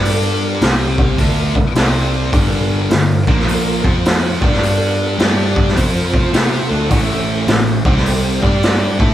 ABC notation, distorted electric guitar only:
X:1
M:4/4
L:1/8
Q:"Swing" 1/4=105
K:G
V:1 name="Distorted electric guitar"
[G,DG]2 [C,G,C]2 [D,A,D] z [C,G,C]2 | [G,,D,G,]2 [G,,D,] [_B,,=F,_B,]2 [F,C=F]2 [G,DG]- | [G,DG]2 [G,DG]2 [=F,C=F]2 [CGc] [D,A,D] | [A,,E,A,]2 [A,,E,] [C,G,C]2 [G,DG]2 [A,EA] |]